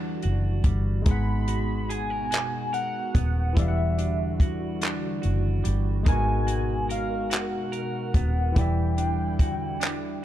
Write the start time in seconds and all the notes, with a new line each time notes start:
Already playing: E1 D3 E3 G3 D4 E4 F#4 D5 F#5
0.22 F#1 F#4, closed hi-hat
0.64 G1 G3, kick, closed hi-hat
1.02 G#3 D#4, closed hi-hat
1.06 G#1 B2 B3 G#4 B5, kick
1.11 F#5
1.48 F#4, closed hi-hat
1.90 G#4 G#5, closed hi-hat
2.10 A#4
2.31 F#1 F#4, clap, closed hi-hat
2.73 A#4 F#5, closed hi-hat
3.15 D#1 B3, kick, closed hi-hat
3.53 D3 E3 E4, kick
3.57 E1 G3 D5 E5, closed hi-hat
3.62 F5
3.68 F#5
3.98 D4, closed hi-hat
4.40 F#4, kick, closed hi-hat
4.81 D4, clap, closed hi-hat
5.22 F#1 F#4, closed hi-hat
5.64 G1 G3, closed hi-hat
6.03 B2 G#3 D#4 A#4, kick, closed hi-hat
6.07 G#1 B3 A#4 G#5
6.12 F#4
6.47 F#4, closed hi-hat
6.89 A#4 F5, closed hi-hat
7.30 F#1 F#4 F#5, clap, closed hi-hat
7.72 A#4, closed hi-hat
8.14 D#1 B3, kick, closed hi-hat
8.52 E3 E4
8.56 E1 D3 E3 G3 E4 D5 G5, kick, closed hi-hat
8.61 E5
8.98 D4, closed hi-hat
9.39 F#4, kick, closed hi-hat
9.80 D4, clap, closed hi-hat